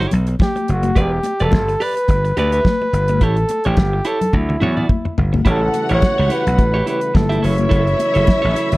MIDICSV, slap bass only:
0, 0, Header, 1, 2, 480
1, 0, Start_track
1, 0, Tempo, 562641
1, 821, Time_signature, 4, 2, 24, 8
1, 7483, End_track
2, 0, Start_track
2, 0, Title_t, "Slap bass"
2, 0, Program_c, 0, 36
2, 109, Note_on_c, 0, 35, 82
2, 293, Note_off_c, 0, 35, 0
2, 589, Note_on_c, 0, 30, 85
2, 773, Note_off_c, 0, 30, 0
2, 823, Note_on_c, 0, 28, 110
2, 1009, Note_off_c, 0, 28, 0
2, 1200, Note_on_c, 0, 28, 82
2, 1280, Note_off_c, 0, 28, 0
2, 1307, Note_on_c, 0, 31, 92
2, 1492, Note_off_c, 0, 31, 0
2, 1785, Note_on_c, 0, 31, 98
2, 1971, Note_off_c, 0, 31, 0
2, 2023, Note_on_c, 0, 38, 86
2, 2209, Note_off_c, 0, 38, 0
2, 2500, Note_on_c, 0, 31, 85
2, 2743, Note_off_c, 0, 31, 0
2, 2743, Note_on_c, 0, 33, 103
2, 2929, Note_off_c, 0, 33, 0
2, 3121, Note_on_c, 0, 33, 85
2, 3201, Note_off_c, 0, 33, 0
2, 3222, Note_on_c, 0, 31, 83
2, 3409, Note_off_c, 0, 31, 0
2, 3699, Note_on_c, 0, 38, 103
2, 3887, Note_off_c, 0, 38, 0
2, 3945, Note_on_c, 0, 40, 84
2, 4130, Note_off_c, 0, 40, 0
2, 4421, Note_on_c, 0, 31, 78
2, 4608, Note_off_c, 0, 31, 0
2, 4658, Note_on_c, 0, 33, 107
2, 4847, Note_off_c, 0, 33, 0
2, 5039, Note_on_c, 0, 33, 92
2, 5120, Note_off_c, 0, 33, 0
2, 5281, Note_on_c, 0, 37, 87
2, 5361, Note_off_c, 0, 37, 0
2, 5517, Note_on_c, 0, 35, 83
2, 5621, Note_off_c, 0, 35, 0
2, 5621, Note_on_c, 0, 33, 82
2, 5808, Note_off_c, 0, 33, 0
2, 6104, Note_on_c, 0, 31, 97
2, 6290, Note_off_c, 0, 31, 0
2, 6348, Note_on_c, 0, 30, 93
2, 6532, Note_off_c, 0, 30, 0
2, 6584, Note_on_c, 0, 30, 104
2, 6770, Note_off_c, 0, 30, 0
2, 6959, Note_on_c, 0, 30, 101
2, 7040, Note_off_c, 0, 30, 0
2, 7204, Note_on_c, 0, 33, 79
2, 7283, Note_off_c, 0, 33, 0
2, 7442, Note_on_c, 0, 30, 107
2, 7483, Note_off_c, 0, 30, 0
2, 7483, End_track
0, 0, End_of_file